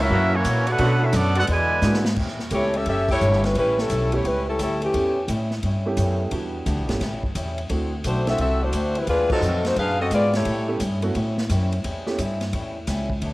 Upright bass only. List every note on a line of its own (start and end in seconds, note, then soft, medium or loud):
0.10 0.44 F#2 loud
0.45 0.78 A#2 loud
0.79 1.12 B2 medium
1.13 1.47 F#2 loud
1.48 1.81 E2 medium
1.82 2.15 G#2 loud
2.17 2.50 E2 medium
2.51 2.85 C#2 medium
2.86 3.20 F#1 medium
3.21 3.54 G1 medium
3.55 3.89 A1 medium
3.90 4.23 B1 medium
4.24 4.58 C#2 medium
4.59 4.92 D2 medium
4.94 5.27 E2 medium
5.28 5.61 A2 medium
5.63 5.96 G2 medium
5.97 6.30 F#2 medium
6.31 6.65 E2 medium
6.66 6.78 D2 loud
6.77 6.88 B1 medium
6.88 6.99 G1 medium
7.01 7.12 C#2 medium
7.12 7.22 A1 medium
7.23 7.34 G1 medium
7.35 7.69 E2 medium
7.70 8.03 D2 medium
8.04 8.38 B1 loud
8.39 8.72 C2 medium
8.73 9.06 D2 medium
9.07 9.41 D#2 medium
9.41 9.75 F2 medium
9.76 10.10 F#2 medium
10.11 10.44 G#2 medium
10.45 10.79 A2 medium
10.80 11.14 G2 medium
11.15 11.48 A2 medium
11.50 11.83 F#2 medium
11.84 12.17 E2 medium
12.18 12.52 G2 medium
12.53 12.86 E2 medium
12.88 13.21 C#2 medium
13.22 13.33 D2 medium